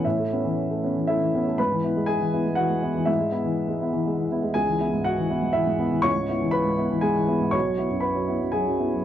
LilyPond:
<<
  \new Staff \with { instrumentName = "Upright piano" } { \time 3/4 \key e \major \tempo 4 = 120 <e' e''>4. r8 <e' e''>4 | <b' b''>4 <gis' gis''>4 <fis' fis''>4 | <e' e''>4. r4. | <gis' gis''>4 <fis' fis''>4 <e' e''>4 |
<cis'' cis'''>4 <b' b''>4 <gis' gis''>4 | <cis'' cis'''>4 <b' b''>4 <gis' gis''>4 | }
  \new Staff \with { instrumentName = "Upright piano" } { \clef bass \time 3/4 \key e \major <a, e>16 a16 <b cis'>16 e8 a16 <b cis'>16 e16 a16 e16 <b cis'>16 a16 | gis,16 e16 <b e'>16 gis8 e16 <b e'>16 gis16 e16 gis16 <b e'>16 e16 | gis,16 gis16 <b e'>16 e8 gis16 <b e'>16 e16 gis16 e16 <b e'>16 gis16 | cis,16 e16 <b e'>16 gis,8 e16 <b e'>16 gis,16 e16 gis,16 <b e'>16 e16 |
cis,16 gis,16 <b e'>16 e8 gis,16 <b e'>16 e16 gis,16 e16 <b e'>16 gis,16 | b,,16 fis16 <b e'>16 fis,8 fis16 <b e'>16 fis,16 fis16 fis,16 <b e'>16 fis16 | }
>>